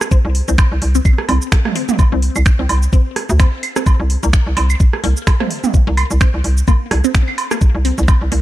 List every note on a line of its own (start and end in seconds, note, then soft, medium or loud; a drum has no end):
0.01 cross-stick medium
0.01 shaker medium
0.11 0.17 C4 medium
0.11 kick loud
0.11 shaker soft
0.25 0.42 C2 loud
0.35 open hi-hat loud
0.48 0.56 C2 medium
0.48 0.55 C4 medium
0.48 shaker medium
0.58 finger snap medium
0.58 kick loud
0.58 low woodblock medium
0.58 shaker soft
0.72 0.79 C2 medium
0.82 1.00 C2 medium
0.82 open hi-hat loud
0.95 1.00 C4 medium
0.95 shaker medium
1.05 kick loud
1.05 claves medium
1.05 shaker soft
1.18 cross-stick medium
1.29 1.39 C2 loud
1.29 1.37 C4 medium
1.29 open hi-hat medium
1.29 low woodblock medium
1.42 shaker medium
1.52 finger snap loud
1.52 kick loud
1.52 cross-stick medium
1.52 open hi-hat soft
1.52 shaker soft
1.65 cross-stick medium
1.65 mid tom medium
1.75 1.81 C4 medium
1.75 open hi-hat loud
1.89 mid tom loud
1.89 shaker soft
1.99 kick loud
1.99 low woodblock medium
1.99 shaker soft
2.12 2.29 C2 loud
2.12 2.19 C4 medium
2.22 open hi-hat loud
2.36 2.43 C2 medium
2.36 claves medium
2.36 shaker soft
2.46 finger snap medium
2.46 kick loud
2.46 shaker soft
2.59 2.67 C2 medium
2.59 2.64 C4 medium
2.69 2.88 C2 medium
2.69 open hi-hat loud
2.69 low woodblock medium
2.83 shaker medium
2.93 3.02 C4 medium
2.93 kick loud
2.93 shaker soft
3.16 cross-stick medium
3.16 open hi-hat medium
3.29 3.46 D2 loud
3.29 shaker soft
3.40 3.45 C4 medium
3.40 finger snap medium
3.40 kick loud
3.40 open hi-hat soft
3.40 low woodblock medium
3.40 shaker soft
3.63 open hi-hat loud
3.63 claves medium
3.76 3.83 C4 medium
3.76 cross-stick medium
3.76 shaker soft
3.86 kick loud
3.86 low woodblock medium
3.86 shaker soft
4.00 4.17 C2 loud
4.10 open hi-hat medium
4.23 4.31 C2 medium
4.23 4.26 A#3 medium
4.23 shaker medium
4.33 finger snap medium
4.33 kick loud
4.33 shaker soft
4.47 4.54 C2 medium
4.57 4.75 C2 medium
4.57 4.65 C4 medium
4.57 open hi-hat medium
4.57 low woodblock medium
4.70 claves medium
4.70 shaker medium
4.80 kick loud
4.80 shaker soft
4.93 cross-stick medium
5.04 5.14 C2 loud
5.04 5.07 A#3 medium
5.04 open hi-hat medium
5.17 shaker medium
5.27 finger snap medium
5.27 kick loud
5.27 cross-stick medium
5.27 open hi-hat soft
5.27 low woodblock medium
5.27 shaker soft
5.40 5.47 C4 medium
5.40 cross-stick medium
5.40 mid tom medium
5.50 open hi-hat medium
5.64 mid tom medium
5.64 shaker medium
5.74 kick loud
5.74 shaker soft
5.87 6.04 C2 loud
5.87 5.90 A#3 medium
5.97 open hi-hat medium
5.97 claves medium
5.97 low woodblock medium
6.11 6.18 C2 medium
6.11 shaker medium
6.21 6.30 C4 medium
6.21 finger snap medium
6.21 kick loud
6.21 shaker soft
6.34 6.42 C2 medium
6.44 6.63 C2 medium
6.44 open hi-hat medium
6.58 shaker medium
6.68 6.71 A#3 medium
6.68 kick loud
6.68 low woodblock medium
6.68 shaker soft
6.91 7.01 C2 loud
6.91 cross-stick medium
6.91 open hi-hat medium
7.04 7.11 C4 medium
7.04 shaker medium
7.15 finger snap medium
7.15 kick loud
7.15 open hi-hat soft
7.15 shaker soft
7.28 claves medium
7.38 open hi-hat medium
7.38 low woodblock medium
7.51 7.54 A#3 medium
7.51 cross-stick medium
7.51 shaker medium
7.61 kick loud
7.61 shaker soft
7.75 7.92 C2 loud
7.85 7.94 C4 medium
7.85 open hi-hat medium
7.98 8.06 C2 loud
7.98 shaker medium
8.08 finger snap medium
8.08 kick loud
8.08 low woodblock medium
8.08 shaker soft
8.22 8.29 C2 medium
8.32 8.42 C2 medium
8.32 8.35 A#3 medium
8.32 open hi-hat medium